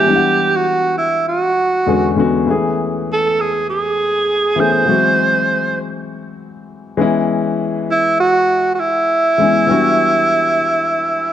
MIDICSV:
0, 0, Header, 1, 3, 480
1, 0, Start_track
1, 0, Tempo, 601805
1, 57, Time_signature, 4, 2, 24, 8
1, 9034, End_track
2, 0, Start_track
2, 0, Title_t, "Tenor saxophone"
2, 0, Program_c, 0, 66
2, 0, Note_on_c, 0, 67, 96
2, 446, Note_on_c, 0, 66, 87
2, 458, Note_off_c, 0, 67, 0
2, 774, Note_off_c, 0, 66, 0
2, 778, Note_on_c, 0, 64, 80
2, 1001, Note_off_c, 0, 64, 0
2, 1023, Note_on_c, 0, 66, 86
2, 1708, Note_off_c, 0, 66, 0
2, 2494, Note_on_c, 0, 69, 78
2, 2716, Note_on_c, 0, 68, 75
2, 2728, Note_off_c, 0, 69, 0
2, 2943, Note_off_c, 0, 68, 0
2, 2948, Note_on_c, 0, 68, 79
2, 3666, Note_on_c, 0, 72, 91
2, 3678, Note_off_c, 0, 68, 0
2, 4620, Note_off_c, 0, 72, 0
2, 6310, Note_on_c, 0, 64, 92
2, 6526, Note_off_c, 0, 64, 0
2, 6540, Note_on_c, 0, 66, 101
2, 6940, Note_off_c, 0, 66, 0
2, 6977, Note_on_c, 0, 66, 61
2, 7016, Note_on_c, 0, 64, 98
2, 7028, Note_off_c, 0, 66, 0
2, 9034, Note_off_c, 0, 64, 0
2, 9034, End_track
3, 0, Start_track
3, 0, Title_t, "Grand piano"
3, 0, Program_c, 1, 0
3, 0, Control_c, 1, 64, 127
3, 42, Note_on_c, 1, 52, 65
3, 46, Note_on_c, 1, 55, 59
3, 56, Note_on_c, 1, 59, 60
3, 61, Note_on_c, 1, 62, 59
3, 67, Control_c, 1, 64, 0
3, 68, Note_on_c, 1, 64, 60
3, 123, Note_off_c, 1, 64, 0
3, 124, Note_on_c, 1, 78, 71
3, 210, Control_c, 1, 64, 127
3, 736, Note_off_c, 1, 52, 0
3, 738, Note_off_c, 1, 55, 0
3, 743, Note_off_c, 1, 59, 0
3, 745, Note_off_c, 1, 62, 0
3, 777, Note_off_c, 1, 78, 0
3, 1486, Note_on_c, 1, 40, 72
3, 1493, Note_on_c, 1, 50, 64
3, 1497, Note_on_c, 1, 56, 65
3, 1503, Note_on_c, 1, 59, 66
3, 1507, Control_c, 1, 64, 0
3, 1508, Note_on_c, 1, 61, 64
3, 1516, Note_on_c, 1, 66, 75
3, 1637, Control_c, 1, 64, 127
3, 1691, Note_off_c, 1, 40, 0
3, 1694, Note_off_c, 1, 50, 0
3, 1696, Note_off_c, 1, 56, 0
3, 1699, Note_off_c, 1, 59, 0
3, 1702, Note_off_c, 1, 61, 0
3, 1706, Note_off_c, 1, 66, 0
3, 1724, Note_on_c, 1, 40, 76
3, 1729, Note_on_c, 1, 50, 70
3, 1734, Note_on_c, 1, 56, 70
3, 1743, Note_on_c, 1, 59, 70
3, 1748, Note_on_c, 1, 61, 71
3, 1752, Note_on_c, 1, 66, 91
3, 1911, Note_off_c, 1, 40, 0
3, 1914, Note_off_c, 1, 50, 0
3, 1916, Note_off_c, 1, 56, 0
3, 1921, Note_off_c, 1, 59, 0
3, 1923, Note_off_c, 1, 61, 0
3, 1925, Note_off_c, 1, 66, 0
3, 1968, Note_on_c, 1, 52, 78
3, 1975, Note_on_c, 1, 57, 66
3, 1984, Note_on_c, 1, 59, 71
3, 1985, Control_c, 1, 64, 0
3, 1989, Note_on_c, 1, 61, 65
3, 1998, Note_on_c, 1, 68, 86
3, 2113, Control_c, 1, 64, 127
3, 2658, Note_off_c, 1, 52, 0
3, 2662, Note_off_c, 1, 57, 0
3, 2666, Note_off_c, 1, 59, 0
3, 2669, Note_off_c, 1, 61, 0
3, 2673, Note_off_c, 1, 68, 0
3, 3635, Note_on_c, 1, 52, 69
3, 3645, Note_on_c, 1, 57, 61
3, 3651, Note_on_c, 1, 59, 59
3, 3658, Note_on_c, 1, 61, 61
3, 3665, Note_on_c, 1, 68, 78
3, 3826, Note_off_c, 1, 52, 0
3, 3832, Note_off_c, 1, 57, 0
3, 3835, Note_off_c, 1, 59, 0
3, 3838, Note_off_c, 1, 61, 0
3, 3841, Note_off_c, 1, 68, 0
3, 3872, Note_on_c, 1, 52, 65
3, 3884, Note_on_c, 1, 56, 62
3, 3890, Note_on_c, 1, 54, 55
3, 3896, Note_on_c, 1, 60, 62
3, 3902, Note_on_c, 1, 66, 74
3, 3904, Control_c, 1, 64, 0
3, 4029, Control_c, 1, 64, 127
3, 4570, Note_off_c, 1, 52, 0
3, 4576, Note_off_c, 1, 56, 0
3, 4579, Note_off_c, 1, 54, 0
3, 4582, Note_off_c, 1, 60, 0
3, 4585, Note_off_c, 1, 66, 0
3, 5561, Note_on_c, 1, 52, 88
3, 5563, Note_on_c, 1, 56, 81
3, 5572, Note_on_c, 1, 59, 80
3, 5581, Note_on_c, 1, 61, 82
3, 5585, Control_c, 1, 64, 0
3, 5593, Note_on_c, 1, 64, 97
3, 5713, Control_c, 1, 64, 127
3, 6343, Note_off_c, 1, 52, 0
3, 6345, Note_off_c, 1, 56, 0
3, 6349, Note_off_c, 1, 59, 0
3, 6353, Note_off_c, 1, 61, 0
3, 6360, Note_off_c, 1, 64, 0
3, 7481, Note_on_c, 1, 52, 67
3, 7486, Note_on_c, 1, 56, 63
3, 7498, Note_on_c, 1, 59, 61
3, 7504, Note_on_c, 1, 61, 64
3, 7515, Note_on_c, 1, 64, 71
3, 7668, Note_off_c, 1, 52, 0
3, 7671, Note_off_c, 1, 56, 0
3, 7677, Note_off_c, 1, 59, 0
3, 7680, Note_off_c, 1, 61, 0
3, 7685, Note_off_c, 1, 64, 0
3, 7711, Note_on_c, 1, 52, 77
3, 7723, Note_on_c, 1, 55, 69
3, 7724, Note_on_c, 1, 59, 74
3, 7737, Note_on_c, 1, 62, 73
3, 7743, Note_on_c, 1, 66, 86
3, 7746, Control_c, 1, 64, 0
3, 7870, Control_c, 1, 64, 127
3, 8409, Note_off_c, 1, 52, 0
3, 8414, Note_off_c, 1, 55, 0
3, 8415, Note_off_c, 1, 59, 0
3, 8422, Note_off_c, 1, 62, 0
3, 8424, Note_off_c, 1, 66, 0
3, 9034, End_track
0, 0, End_of_file